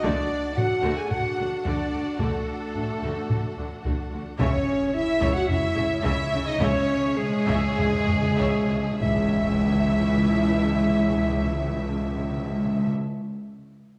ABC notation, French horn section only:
X:1
M:4/4
L:1/16
Q:1/4=106
K:C#m
V:1 name="French horn section"
=D4 F3 G F4 D4 | A,12- A,2 z2 | C4 E3 F E4 E3 D | C4 G,12 |
E,16- | E,16 |]